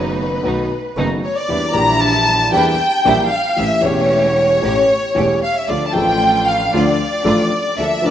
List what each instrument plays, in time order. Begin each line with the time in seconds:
Already playing: double bass F#1, grand piano F#1 F#2 D#3 A3 B3 F#4, string section A3 B3 D#4, violin section B4
0.43 grand piano B1 B2 D#3 A3 B3 F#4, double bass B1, string section A3 B3 D#4
0.97 double bass F#1, grand piano F#1 F#2 D#3 A3 B3 F#4, string section A3 B3 D#4
1.24 violin section C#5
1.37 violin section D5
1.48 grand piano E2 E3 A#3 D4 G4, double bass E2, string section G3 D4 E4
1.72 grand piano A#1 A#2 E3 A#3 D4 G4, double bass A#1, string section G3 D4 E4, violin section A#5
2.02 violin section A5
2.52 grand piano E2 E3 A#3 D4 G4, double bass E2, string section G3 D4 E4, violin section G5
3.05 grand piano A#1 A#2 E3 A#3 D4 G4, double bass A#1, string section G3 D4 E4
3.32 violin section F5
3.56 grand piano A1 A2 E3 A3 C#4 G4, double bass A1, string section A3 C#4 G4, violin section E5
3.81 grand piano E1 E2 E3 A3 C#4, double bass E1, string section A3 C#4 G4, violin section C#5
3.85 grand piano G4
4.62 grand piano A1 A2 E3 A3 C#4 G4, double bass A1, string section A3 C#4 G4
5.15 grand piano E1 E2 E3 A3 C#4 G4, double bass E1, string section A3 C#4 G4
5.43 violin section F5
5.56 violin section E5
5.68 double bass D2, grand piano D2 D3 F3 A3 D4 A4, string section A3 D4 F4, violin section D5
5.87 violin section A5
5.93 double bass A1, grand piano A1 A2 F3 A3 D4 A4, string section A3 D4 F4, violin section G5
6.48 violin section F5
6.73 double bass D2, grand piano D2 D3 F3 A3 D4 A4, string section A3 D4 F4, violin section D5
7.24 grand piano A1 A2 F3 A3 D4 A4, double bass A1, string section A3 D4 F4
7.77 double bass D2, grand piano D2 D3 F3 A#3 D4 A4, string section A#3 D4 A4, violin section E5
8.02 double bass D2, grand piano D2 D3 F3 A#3 D4, string section A#3 D4 A5
8.06 grand piano A#4, violin section D5